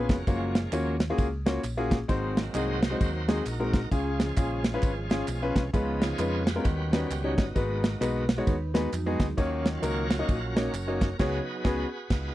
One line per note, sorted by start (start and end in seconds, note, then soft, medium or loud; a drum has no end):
0.00 0.14 B3 medium
0.00 0.14 C#4 medium
0.00 0.14 F4 medium
0.00 0.14 G#4 medium
0.00 0.10 G#4 medium
0.00 0.14 B4 medium
0.09 0.24 F1 medium
0.09 0.27 A#3 medium
0.09 0.98 C#4 medium
0.09 0.52 F#4 medium
0.09 kick loud
0.09 snare loud
0.09 ride medium
0.09 tambourine medium
0.27 0.66 F#1 loud
0.27 0.97 F3 medium
0.27 0.97 G#3 medium
0.27 0.55 A#3 medium
0.27 0.98 A#3 medium
0.27 0.56 C#4 medium
0.27 0.56 F4 medium
0.27 0.56 F#4 medium
0.27 0.56 C#5 medium
0.27 kick loud
0.27 ride medium
0.27 tambourine medium
0.55 snare loud
0.55 ride medium
0.55 tambourine soft
0.72 1.11 D#2 medium
0.72 0.94 A#3 medium
0.72 0.94 C#4 medium
0.72 0.94 F4 medium
0.72 0.94 F#4 medium
0.72 0.94 C#5 loud
0.72 clap loud
0.72 ride medium
0.72 tambourine loud
1.00 snare loud
1.00 ride medium
1.00 tambourine medium
1.10 1.26 A#3 medium
1.10 1.26 C#4 medium
1.10 1.26 F4 medium
1.10 1.26 F#4 medium
1.10 1.26 G#4 loud
1.18 1.57 C#2 medium
1.18 kick loud
1.18 ride medium
1.18 tambourine medium
1.46 1.59 A#3 medium
1.46 1.59 C#4 medium
1.46 1.59 F4 medium
1.46 1.60 F#4 medium
1.46 1.60 C#5 loud
1.46 snare loud
1.46 ride medium
1.46 tambourine medium
1.64 2.02 A#1 medium
1.64 clap loud
1.64 ride medium
1.64 tambourine loud
1.77 1.96 A#3 medium
1.77 1.96 C#4 medium
1.77 1.96 F4 medium
1.77 1.96 F#4 medium
1.77 1.96 G#4 loud
1.91 kick loud
1.91 snare loud
1.91 ride medium
1.91 tambourine medium
2.08 2.48 G#1 loud
2.08 2.78 G#2 medium
2.08 3.27 F#3 medium
2.08 2.37 G#3 medium
2.08 3.28 A#3 medium
2.08 2.37 C4 medium
2.08 3.29 C4 medium
2.08 2.37 D#4 medium
2.08 2.37 F#4 medium
2.08 2.37 C5 loud
2.08 kick loud
2.08 ride medium
2.08 tambourine medium
2.37 snare loud
2.37 ride medium
2.37 tambourine medium
2.54 2.93 C2 medium
2.54 2.76 G#3 medium
2.54 2.76 C4 medium
2.54 2.76 D#4 medium
2.54 2.76 F#4 medium
2.54 3.00 F#4 medium
2.54 2.76 G#4 medium
2.54 2.99 C5 medium
2.54 2.97 D#5 loud
2.54 clap loud
2.54 ride medium
2.54 tambourine loud
2.83 snare loud
2.83 ride medium
2.83 tambourine medium
2.91 3.07 G#3 medium
2.91 3.07 C4 medium
2.91 3.07 D#4 medium
2.91 3.07 F#4 medium
2.91 3.07 C5 medium
2.95 3.00 C#5 medium
3.00 3.39 D#2 medium
3.00 3.47 D#4 medium
3.00 3.47 F#4 medium
3.00 3.47 C5 loud
3.00 kick loud
3.00 ride medium
3.00 tambourine medium
3.28 3.44 F#3 soft
3.28 3.42 G#3 medium
3.28 3.45 A#3 soft
3.28 3.42 C4 medium
3.28 3.45 C4 medium
3.28 3.42 D#4 medium
3.28 3.42 F#4 medium
3.28 3.42 G#4 medium
3.28 snare loud
3.28 ride medium
3.28 tambourine medium
3.46 3.85 A#1 medium
3.46 3.89 D#4 medium
3.46 3.89 F#4 medium
3.46 3.93 A#4 medium
3.46 clap medium
3.46 ride medium
3.46 tambourine loud
3.60 3.78 G#3 medium
3.60 3.78 C4 medium
3.60 3.78 D#4 medium
3.60 3.78 F#4 medium
3.60 3.78 A#4 medium
3.73 kick loud
3.73 snare loud
3.73 ride medium
3.73 tambourine medium
3.91 4.30 C#2 loud
3.91 4.61 C#3 medium
3.91 4.20 C#4 medium
3.91 4.20 F4 medium
3.91 5.53 F4 medium
3.91 4.20 G#4 medium
3.91 5.53 G#4 medium
3.91 kick loud
3.91 ride medium
3.91 tambourine medium
4.20 5.70 F3 medium
4.20 5.70 G#3 medium
4.20 5.71 C#4 medium
4.20 snare loud
4.20 ride medium
4.20 tambourine medium
4.37 4.76 A#1 medium
4.37 4.58 C#4 medium
4.37 4.58 F4 medium
4.37 4.58 G#4 medium
4.37 kick medium
4.37 clap loud
4.37 ride medium
4.37 tambourine loud
4.64 snare loud
4.64 ride medium
4.64 tambourine medium
4.74 4.90 C#4 medium
4.74 4.90 F4 medium
4.74 4.90 B4 loud
4.82 5.21 G#1 medium
4.82 kick loud
4.82 clap medium
4.82 ride medium
4.82 tambourine medium
5.10 5.24 C#4 medium
5.10 5.24 F4 medium
5.10 5.24 G#4 medium
5.10 snare loud
5.10 ride medium
5.10 tambourine medium
5.28 5.52 B1 medium
5.28 clap medium
5.28 ride medium
5.28 tambourine loud
5.42 5.61 C#4 medium
5.42 5.61 F4 medium
5.42 5.61 B4 loud
5.55 5.71 C2 medium
5.55 kick medium
5.55 snare loud
5.55 ride medium
5.55 tambourine medium
5.73 6.12 C#2 loud
5.73 6.43 C#3 medium
5.73 6.44 F3 medium
5.73 6.02 G#3 medium
5.73 6.02 B3 medium
5.73 6.44 B3 medium
5.73 6.02 C#4 medium
5.73 6.45 D#4 medium
5.73 6.02 F4 medium
5.73 6.02 B4 medium
5.73 kick loud
5.73 ride medium
5.73 tambourine medium
6.02 6.62 F4 medium
6.02 6.62 G#4 medium
6.02 6.49 C#5 loud
6.02 snare loud
6.02 ride medium
6.02 tambourine medium
6.18 6.58 F2 medium
6.18 6.40 G#3 medium
6.18 6.41 B3 medium
6.18 6.41 C#4 medium
6.18 6.41 F4 medium
6.18 6.41 B4 medium
6.18 clap loud
6.18 ride medium
6.18 tambourine loud
6.47 7.35 F#4 medium
6.47 7.10 G4 medium
6.47 7.07 B4 loud
6.47 snare loud
6.47 ride medium
6.47 tambourine medium
6.55 6.64 G#3 medium
6.55 6.65 B3 medium
6.55 6.65 C#4 medium
6.55 6.65 F4 medium
6.55 6.65 A#4 medium
6.64 7.04 D#2 loud
6.64 7.34 D#3 medium
6.64 7.34 G3 medium
6.64 7.34 B3 medium
6.64 7.35 C#4 medium
6.64 kick loud
6.64 ride medium
6.64 tambourine medium
6.92 7.06 G3 medium
6.92 7.06 C#4 medium
6.92 7.06 D#4 medium
6.92 7.06 F#4 medium
6.92 7.06 B4 medium
6.92 snare loud
6.92 ride medium
6.92 tambourine medium
7.10 7.34 C#2 medium
7.10 7.40 G4 medium
7.10 clap loud
7.10 ride medium
7.10 tambourine loud
7.24 7.43 G3 medium
7.24 7.43 C#4 medium
7.24 7.43 D#4 medium
7.24 7.43 F#4 medium
7.24 7.43 C#5 medium
7.38 7.53 G1 medium
7.38 7.54 B3 medium
7.38 8.26 D#4 medium
7.38 7.55 F#4 medium
7.38 kick loud
7.38 snare loud
7.38 ride medium
7.38 tambourine medium
7.55 7.94 G#1 loud
7.55 8.25 G#2 medium
7.55 7.84 G#3 medium
7.55 8.28 A#3 medium
7.55 7.84 B3 medium
7.55 8.28 B3 medium
7.55 7.84 D#4 medium
7.55 7.84 F#4 medium
7.55 8.29 F#4 medium
7.55 7.84 B4 medium
7.55 kick loud
7.55 ride medium
7.55 tambourine medium
7.84 snare loud
7.84 ride medium
7.84 tambourine soft
8.01 8.40 B1 loud
8.01 8.22 G#3 medium
8.01 8.22 B3 medium
8.01 8.22 D#4 medium
8.01 8.22 F#4 medium
8.01 8.22 B4 loud
8.01 clap loud
8.01 ride medium
8.01 tambourine loud
8.29 8.45 A#3 medium
8.29 8.45 B3 soft
8.29 8.46 F#4 medium
8.29 snare loud
8.29 ride medium
8.29 tambourine medium
8.38 8.54 G#3 medium
8.38 8.54 B3 medium
8.38 8.54 D#4 medium
8.38 8.54 F#4 medium
8.38 8.54 C#5 loud
8.47 8.86 D#2 medium
8.47 8.74 D#4 medium
8.47 8.73 B4 medium
8.47 kick loud
8.47 ride medium
8.47 tambourine medium
8.74 8.88 G#3 medium
8.74 8.88 B3 medium
8.74 8.92 B3 medium
8.74 8.88 D#4 medium
8.74 8.88 F#4 medium
8.74 8.91 G#4 medium
8.74 8.88 B4 loud
8.74 snare loud
8.74 ride medium
8.74 tambourine medium
8.92 9.16 F2 medium
8.92 9.36 F#3 medium
8.92 9.36 D#4 medium
8.92 clap loud
8.92 ride medium
8.92 tambourine loud
9.06 9.25 G#3 medium
9.06 9.25 B3 medium
9.06 9.25 D#4 medium
9.06 9.25 F#4 medium
9.06 9.25 G#4 loud
9.20 9.35 D2 medium
9.20 kick loud
9.20 snare loud
9.20 ride medium
9.20 tambourine soft
9.37 9.76 D#2 loud
9.37 10.07 D#3 medium
9.37 10.28 F#3 medium
9.37 9.66 A#3 medium
9.37 9.66 C#4 medium
9.37 10.29 C#4 medium
9.37 9.66 D#4 medium
9.37 10.29 F4 medium
9.37 9.66 F#4 medium
9.37 9.66 C#5 loud
9.37 kick loud
9.37 ride medium
9.37 tambourine medium
9.66 snare loud
9.66 ride medium
9.66 tambourine soft
9.82 10.21 C#2 loud
9.82 10.04 A#3 medium
9.82 10.04 C#4 medium
9.82 10.04 D#4 medium
9.82 10.04 F#4 medium
9.82 10.29 F#4 medium
9.82 10.04 A#4 medium
9.82 10.29 A#4 medium
9.82 10.31 C#5 loud
9.82 clap loud
9.82 ride medium
9.82 tambourine loud
10.11 snare loud
10.11 ride medium
10.11 tambourine medium
10.19 10.35 A#3 medium
10.19 10.35 C#4 medium
10.19 10.36 D#4 medium
10.19 10.36 F#4 medium
10.19 10.36 D#5 medium
10.29 10.67 A#1 medium
10.29 10.54 F#3 medium
10.29 10.74 C#4 medium
10.29 10.55 F4 medium
10.29 10.74 F#4 medium
10.29 10.74 A#4 loud
10.29 kick loud
10.29 ride medium
10.29 tambourine medium
10.56 10.70 A#3 medium
10.56 10.70 C#4 medium
10.56 10.70 D#4 medium
10.56 10.70 F#4 medium
10.56 10.70 C#5 medium
10.56 snare loud
10.56 ride medium
10.56 tambourine medium
10.73 11.12 F#1 medium
10.73 11.17 C#4 medium
10.73 11.17 F#4 medium
10.73 11.22 A#4 medium
10.73 clap medium
10.73 ride medium
10.73 tambourine loud
10.88 11.06 A#3 medium
10.88 11.06 C#4 medium
10.88 11.07 D#4 medium
10.88 11.07 F#4 medium
10.88 11.07 C#5 medium
11.01 kick loud
11.01 snare loud
11.01 ride medium
11.01 tambourine medium
11.19 11.39 C#2 loud
11.19 11.39 C#3 loud
11.19 11.89 F#3 medium
11.19 11.38 B3 loud
11.19 11.90 B3 medium
11.19 11.39 C#4 loud
11.19 11.90 D#4 medium
11.19 11.39 F#4 loud
11.19 12.35 F#4 medium
11.19 11.39 G#4 loud
11.19 12.35 G#4 medium
11.19 12.35 B4 medium
11.19 11.39 C#5 loud
11.19 kick loud
11.19 snare loud
11.19 crash medium
11.64 11.84 C#2 loud
11.64 11.84 B3 loud
11.64 11.84 C#4 loud
11.64 11.84 F#4 loud
11.64 11.84 G#4 loud
11.64 11.84 B4 loud
11.64 kick loud
11.64 snare loud
12.10 12.29 C#2 loud
12.10 12.35 B3 medium
12.10 12.35 D#4 medium
12.10 12.35 F4 medium
12.10 kick loud
12.10 snare loud
12.10 crash medium